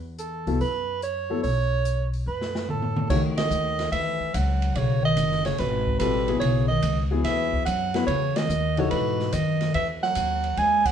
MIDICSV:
0, 0, Header, 1, 7, 480
1, 0, Start_track
1, 0, Tempo, 415512
1, 1657, Time_signature, 4, 2, 24, 8
1, 12612, End_track
2, 0, Start_track
2, 0, Title_t, "Soprano saxophone"
2, 0, Program_c, 0, 64
2, 226, Note_on_c, 0, 69, 78
2, 668, Note_off_c, 0, 69, 0
2, 705, Note_on_c, 0, 71, 86
2, 1147, Note_off_c, 0, 71, 0
2, 1194, Note_on_c, 0, 73, 90
2, 1633, Note_off_c, 0, 73, 0
2, 1652, Note_on_c, 0, 73, 104
2, 2412, Note_off_c, 0, 73, 0
2, 2628, Note_on_c, 0, 71, 68
2, 3069, Note_off_c, 0, 71, 0
2, 3118, Note_on_c, 0, 69, 73
2, 3555, Note_off_c, 0, 69, 0
2, 3580, Note_on_c, 0, 73, 81
2, 3725, Note_off_c, 0, 73, 0
2, 3900, Note_on_c, 0, 75, 98
2, 4492, Note_off_c, 0, 75, 0
2, 4528, Note_on_c, 0, 76, 85
2, 5022, Note_on_c, 0, 78, 80
2, 5039, Note_off_c, 0, 76, 0
2, 5513, Note_on_c, 0, 73, 85
2, 5530, Note_off_c, 0, 78, 0
2, 5828, Note_off_c, 0, 73, 0
2, 5835, Note_on_c, 0, 75, 99
2, 6274, Note_off_c, 0, 75, 0
2, 6303, Note_on_c, 0, 73, 75
2, 6462, Note_on_c, 0, 71, 86
2, 6479, Note_off_c, 0, 73, 0
2, 6915, Note_off_c, 0, 71, 0
2, 6922, Note_on_c, 0, 71, 86
2, 7375, Note_off_c, 0, 71, 0
2, 7394, Note_on_c, 0, 73, 92
2, 7705, Note_off_c, 0, 73, 0
2, 7719, Note_on_c, 0, 75, 97
2, 8083, Note_off_c, 0, 75, 0
2, 8371, Note_on_c, 0, 76, 96
2, 8819, Note_off_c, 0, 76, 0
2, 8842, Note_on_c, 0, 78, 92
2, 9294, Note_off_c, 0, 78, 0
2, 9322, Note_on_c, 0, 73, 95
2, 9670, Note_on_c, 0, 75, 99
2, 9687, Note_off_c, 0, 73, 0
2, 10156, Note_on_c, 0, 73, 78
2, 10173, Note_off_c, 0, 75, 0
2, 10280, Note_off_c, 0, 73, 0
2, 10287, Note_on_c, 0, 71, 85
2, 10780, Note_on_c, 0, 75, 90
2, 10797, Note_off_c, 0, 71, 0
2, 11256, Note_off_c, 0, 75, 0
2, 11262, Note_on_c, 0, 76, 89
2, 11405, Note_off_c, 0, 76, 0
2, 11590, Note_on_c, 0, 78, 108
2, 12225, Note_on_c, 0, 80, 104
2, 12243, Note_off_c, 0, 78, 0
2, 12544, Note_on_c, 0, 78, 109
2, 12562, Note_off_c, 0, 80, 0
2, 12612, Note_off_c, 0, 78, 0
2, 12612, End_track
3, 0, Start_track
3, 0, Title_t, "Grand piano"
3, 0, Program_c, 1, 0
3, 546, Note_on_c, 1, 54, 62
3, 548, Note_on_c, 1, 59, 57
3, 551, Note_on_c, 1, 64, 59
3, 556, Note_on_c, 1, 69, 72
3, 683, Note_off_c, 1, 54, 0
3, 684, Note_off_c, 1, 59, 0
3, 686, Note_off_c, 1, 64, 0
3, 688, Note_off_c, 1, 69, 0
3, 1502, Note_on_c, 1, 54, 61
3, 1506, Note_on_c, 1, 59, 54
3, 1506, Note_on_c, 1, 64, 58
3, 1511, Note_on_c, 1, 69, 72
3, 1642, Note_off_c, 1, 54, 0
3, 1644, Note_off_c, 1, 59, 0
3, 1644, Note_off_c, 1, 64, 0
3, 1646, Note_off_c, 1, 69, 0
3, 3584, Note_on_c, 1, 51, 54
3, 3588, Note_on_c, 1, 57, 49
3, 3590, Note_on_c, 1, 63, 48
3, 3592, Note_on_c, 1, 66, 61
3, 4926, Note_off_c, 1, 51, 0
3, 4928, Note_off_c, 1, 57, 0
3, 4930, Note_off_c, 1, 63, 0
3, 4931, Note_off_c, 1, 66, 0
3, 6936, Note_on_c, 1, 55, 67
3, 6943, Note_on_c, 1, 60, 59
3, 6944, Note_on_c, 1, 65, 58
3, 6945, Note_on_c, 1, 69, 68
3, 7227, Note_off_c, 1, 55, 0
3, 7231, Note_off_c, 1, 60, 0
3, 7231, Note_off_c, 1, 65, 0
3, 7231, Note_off_c, 1, 69, 0
3, 7257, Note_on_c, 1, 54, 65
3, 7261, Note_on_c, 1, 59, 59
3, 7264, Note_on_c, 1, 64, 57
3, 7267, Note_on_c, 1, 68, 69
3, 7673, Note_off_c, 1, 54, 0
3, 7676, Note_off_c, 1, 59, 0
3, 7677, Note_off_c, 1, 64, 0
3, 7678, Note_off_c, 1, 68, 0
3, 8211, Note_on_c, 1, 54, 66
3, 8218, Note_on_c, 1, 59, 59
3, 8221, Note_on_c, 1, 64, 64
3, 8223, Note_on_c, 1, 68, 78
3, 8820, Note_off_c, 1, 54, 0
3, 8823, Note_off_c, 1, 59, 0
3, 8825, Note_off_c, 1, 64, 0
3, 8826, Note_off_c, 1, 68, 0
3, 9178, Note_on_c, 1, 54, 77
3, 9181, Note_on_c, 1, 59, 66
3, 9182, Note_on_c, 1, 64, 72
3, 9187, Note_on_c, 1, 71, 85
3, 9319, Note_off_c, 1, 54, 0
3, 9321, Note_off_c, 1, 59, 0
3, 9321, Note_off_c, 1, 64, 0
3, 9324, Note_off_c, 1, 71, 0
3, 10141, Note_on_c, 1, 52, 70
3, 10145, Note_on_c, 1, 69, 64
3, 10146, Note_on_c, 1, 63, 66
3, 10152, Note_on_c, 1, 66, 84
3, 10744, Note_off_c, 1, 52, 0
3, 10746, Note_off_c, 1, 69, 0
3, 10747, Note_off_c, 1, 63, 0
3, 10750, Note_off_c, 1, 66, 0
3, 12612, End_track
4, 0, Start_track
4, 0, Title_t, "Bass clarinet"
4, 0, Program_c, 2, 71
4, 3085, Note_on_c, 2, 45, 62
4, 3537, Note_off_c, 2, 45, 0
4, 3576, Note_on_c, 2, 49, 68
4, 3721, Note_off_c, 2, 49, 0
4, 3887, Note_on_c, 2, 51, 72
4, 4485, Note_off_c, 2, 51, 0
4, 4525, Note_on_c, 2, 52, 74
4, 5010, Note_on_c, 2, 54, 75
4, 5027, Note_off_c, 2, 52, 0
4, 5497, Note_on_c, 2, 49, 74
4, 5515, Note_off_c, 2, 54, 0
4, 5795, Note_off_c, 2, 49, 0
4, 5802, Note_on_c, 2, 51, 72
4, 6257, Note_off_c, 2, 51, 0
4, 6297, Note_on_c, 2, 49, 71
4, 6451, Note_on_c, 2, 47, 73
4, 6468, Note_off_c, 2, 49, 0
4, 6925, Note_off_c, 2, 47, 0
4, 6932, Note_on_c, 2, 47, 75
4, 7380, Note_off_c, 2, 47, 0
4, 7406, Note_on_c, 2, 49, 76
4, 7711, Note_off_c, 2, 49, 0
4, 7731, Note_on_c, 2, 51, 78
4, 8089, Note_off_c, 2, 51, 0
4, 8365, Note_on_c, 2, 52, 83
4, 8816, Note_off_c, 2, 52, 0
4, 8843, Note_on_c, 2, 54, 85
4, 9295, Note_off_c, 2, 54, 0
4, 9333, Note_on_c, 2, 49, 74
4, 9661, Note_on_c, 2, 51, 80
4, 9679, Note_off_c, 2, 49, 0
4, 10136, Note_on_c, 2, 49, 77
4, 10154, Note_off_c, 2, 51, 0
4, 10280, Note_off_c, 2, 49, 0
4, 10287, Note_on_c, 2, 47, 77
4, 10775, Note_on_c, 2, 51, 81
4, 10792, Note_off_c, 2, 47, 0
4, 11240, Note_off_c, 2, 51, 0
4, 11247, Note_on_c, 2, 52, 82
4, 11394, Note_off_c, 2, 52, 0
4, 11580, Note_on_c, 2, 54, 84
4, 12224, Note_on_c, 2, 56, 88
4, 12241, Note_off_c, 2, 54, 0
4, 12545, Note_on_c, 2, 54, 82
4, 12563, Note_off_c, 2, 56, 0
4, 12612, Note_off_c, 2, 54, 0
4, 12612, End_track
5, 0, Start_track
5, 0, Title_t, "Upright bass"
5, 0, Program_c, 3, 32
5, 0, Note_on_c, 3, 40, 81
5, 492, Note_off_c, 3, 40, 0
5, 539, Note_on_c, 3, 36, 68
5, 684, Note_off_c, 3, 36, 0
5, 697, Note_on_c, 3, 42, 72
5, 1611, Note_off_c, 3, 42, 0
5, 1664, Note_on_c, 3, 35, 83
5, 2574, Note_off_c, 3, 35, 0
5, 2613, Note_on_c, 3, 42, 72
5, 3529, Note_off_c, 3, 42, 0
5, 3577, Note_on_c, 3, 40, 82
5, 4043, Note_off_c, 3, 40, 0
5, 4051, Note_on_c, 3, 39, 89
5, 4519, Note_off_c, 3, 39, 0
5, 4529, Note_on_c, 3, 40, 74
5, 4833, Note_off_c, 3, 40, 0
5, 5018, Note_on_c, 3, 37, 87
5, 5483, Note_off_c, 3, 37, 0
5, 5494, Note_on_c, 3, 35, 82
5, 5961, Note_off_c, 3, 35, 0
5, 5968, Note_on_c, 3, 30, 92
5, 6438, Note_off_c, 3, 30, 0
5, 6460, Note_on_c, 3, 32, 82
5, 6920, Note_off_c, 3, 32, 0
5, 6926, Note_on_c, 3, 33, 85
5, 7397, Note_off_c, 3, 33, 0
5, 7411, Note_on_c, 3, 35, 82
5, 7879, Note_off_c, 3, 35, 0
5, 7888, Note_on_c, 3, 37, 92
5, 8357, Note_off_c, 3, 37, 0
5, 8362, Note_on_c, 3, 39, 80
5, 8834, Note_off_c, 3, 39, 0
5, 8850, Note_on_c, 3, 42, 84
5, 9315, Note_off_c, 3, 42, 0
5, 9322, Note_on_c, 3, 40, 78
5, 9794, Note_off_c, 3, 40, 0
5, 9810, Note_on_c, 3, 39, 90
5, 10277, Note_off_c, 3, 39, 0
5, 10296, Note_on_c, 3, 44, 81
5, 10760, Note_off_c, 3, 44, 0
5, 10779, Note_on_c, 3, 42, 87
5, 11241, Note_off_c, 3, 42, 0
5, 11258, Note_on_c, 3, 40, 83
5, 11721, Note_off_c, 3, 40, 0
5, 11737, Note_on_c, 3, 39, 88
5, 12200, Note_off_c, 3, 39, 0
5, 12212, Note_on_c, 3, 39, 81
5, 12612, Note_off_c, 3, 39, 0
5, 12612, End_track
6, 0, Start_track
6, 0, Title_t, "Muted upright bass strokes"
6, 4854, Note_on_c, 9, 29, 38
6, 4970, Note_off_c, 9, 29, 0
6, 12612, End_track
7, 0, Start_track
7, 0, Title_t, "Drums"
7, 214, Note_on_c, 9, 42, 49
7, 329, Note_off_c, 9, 42, 0
7, 543, Note_on_c, 9, 46, 34
7, 659, Note_off_c, 9, 46, 0
7, 701, Note_on_c, 9, 46, 42
7, 817, Note_off_c, 9, 46, 0
7, 1182, Note_on_c, 9, 42, 48
7, 1297, Note_off_c, 9, 42, 0
7, 1659, Note_on_c, 9, 46, 44
7, 1775, Note_off_c, 9, 46, 0
7, 2139, Note_on_c, 9, 42, 52
7, 2255, Note_off_c, 9, 42, 0
7, 2465, Note_on_c, 9, 46, 33
7, 2581, Note_off_c, 9, 46, 0
7, 2788, Note_on_c, 9, 38, 48
7, 2904, Note_off_c, 9, 38, 0
7, 2948, Note_on_c, 9, 38, 61
7, 3063, Note_off_c, 9, 38, 0
7, 3103, Note_on_c, 9, 47, 56
7, 3218, Note_off_c, 9, 47, 0
7, 3262, Note_on_c, 9, 47, 60
7, 3377, Note_off_c, 9, 47, 0
7, 3424, Note_on_c, 9, 47, 77
7, 3540, Note_off_c, 9, 47, 0
7, 3581, Note_on_c, 9, 36, 76
7, 3583, Note_on_c, 9, 49, 72
7, 3697, Note_off_c, 9, 36, 0
7, 3698, Note_off_c, 9, 49, 0
7, 3899, Note_on_c, 9, 51, 62
7, 3905, Note_on_c, 9, 38, 79
7, 4015, Note_off_c, 9, 51, 0
7, 4021, Note_off_c, 9, 38, 0
7, 4050, Note_on_c, 9, 44, 58
7, 4166, Note_off_c, 9, 44, 0
7, 4377, Note_on_c, 9, 51, 43
7, 4382, Note_on_c, 9, 38, 46
7, 4492, Note_off_c, 9, 51, 0
7, 4498, Note_off_c, 9, 38, 0
7, 4533, Note_on_c, 9, 51, 58
7, 4649, Note_off_c, 9, 51, 0
7, 5016, Note_on_c, 9, 44, 52
7, 5016, Note_on_c, 9, 51, 70
7, 5131, Note_off_c, 9, 44, 0
7, 5131, Note_off_c, 9, 51, 0
7, 5338, Note_on_c, 9, 51, 49
7, 5454, Note_off_c, 9, 51, 0
7, 5492, Note_on_c, 9, 51, 65
7, 5607, Note_off_c, 9, 51, 0
7, 5969, Note_on_c, 9, 44, 61
7, 5969, Note_on_c, 9, 51, 62
7, 6085, Note_off_c, 9, 44, 0
7, 6085, Note_off_c, 9, 51, 0
7, 6138, Note_on_c, 9, 38, 29
7, 6254, Note_off_c, 9, 38, 0
7, 6294, Note_on_c, 9, 51, 44
7, 6299, Note_on_c, 9, 38, 44
7, 6410, Note_off_c, 9, 51, 0
7, 6415, Note_off_c, 9, 38, 0
7, 6449, Note_on_c, 9, 51, 55
7, 6455, Note_on_c, 9, 38, 39
7, 6565, Note_off_c, 9, 51, 0
7, 6571, Note_off_c, 9, 38, 0
7, 6778, Note_on_c, 9, 36, 55
7, 6894, Note_off_c, 9, 36, 0
7, 6927, Note_on_c, 9, 44, 55
7, 6927, Note_on_c, 9, 51, 70
7, 7042, Note_off_c, 9, 44, 0
7, 7042, Note_off_c, 9, 51, 0
7, 7254, Note_on_c, 9, 51, 45
7, 7369, Note_off_c, 9, 51, 0
7, 7409, Note_on_c, 9, 51, 65
7, 7524, Note_off_c, 9, 51, 0
7, 7883, Note_on_c, 9, 44, 55
7, 7883, Note_on_c, 9, 51, 74
7, 7999, Note_off_c, 9, 44, 0
7, 7999, Note_off_c, 9, 51, 0
7, 8369, Note_on_c, 9, 51, 59
7, 8375, Note_on_c, 9, 38, 35
7, 8484, Note_off_c, 9, 51, 0
7, 8490, Note_off_c, 9, 38, 0
7, 8699, Note_on_c, 9, 36, 56
7, 8815, Note_off_c, 9, 36, 0
7, 8852, Note_on_c, 9, 44, 59
7, 8852, Note_on_c, 9, 51, 72
7, 8967, Note_off_c, 9, 44, 0
7, 8967, Note_off_c, 9, 51, 0
7, 9173, Note_on_c, 9, 51, 47
7, 9179, Note_on_c, 9, 38, 53
7, 9289, Note_off_c, 9, 51, 0
7, 9295, Note_off_c, 9, 38, 0
7, 9330, Note_on_c, 9, 51, 64
7, 9446, Note_off_c, 9, 51, 0
7, 9656, Note_on_c, 9, 51, 66
7, 9662, Note_on_c, 9, 38, 79
7, 9771, Note_off_c, 9, 51, 0
7, 9777, Note_off_c, 9, 38, 0
7, 9812, Note_on_c, 9, 44, 58
7, 9927, Note_off_c, 9, 44, 0
7, 10133, Note_on_c, 9, 51, 44
7, 10249, Note_off_c, 9, 51, 0
7, 10291, Note_on_c, 9, 51, 60
7, 10406, Note_off_c, 9, 51, 0
7, 10623, Note_on_c, 9, 38, 36
7, 10739, Note_off_c, 9, 38, 0
7, 10772, Note_on_c, 9, 44, 62
7, 10772, Note_on_c, 9, 51, 71
7, 10887, Note_off_c, 9, 44, 0
7, 10887, Note_off_c, 9, 51, 0
7, 11097, Note_on_c, 9, 51, 48
7, 11103, Note_on_c, 9, 38, 40
7, 11213, Note_off_c, 9, 51, 0
7, 11219, Note_off_c, 9, 38, 0
7, 11254, Note_on_c, 9, 51, 62
7, 11369, Note_off_c, 9, 51, 0
7, 11585, Note_on_c, 9, 38, 37
7, 11700, Note_off_c, 9, 38, 0
7, 11728, Note_on_c, 9, 44, 57
7, 11728, Note_on_c, 9, 51, 70
7, 11844, Note_off_c, 9, 44, 0
7, 11844, Note_off_c, 9, 51, 0
7, 12056, Note_on_c, 9, 51, 44
7, 12171, Note_off_c, 9, 51, 0
7, 12214, Note_on_c, 9, 51, 58
7, 12330, Note_off_c, 9, 51, 0
7, 12539, Note_on_c, 9, 36, 82
7, 12540, Note_on_c, 9, 49, 74
7, 12612, Note_off_c, 9, 36, 0
7, 12612, Note_off_c, 9, 49, 0
7, 12612, End_track
0, 0, End_of_file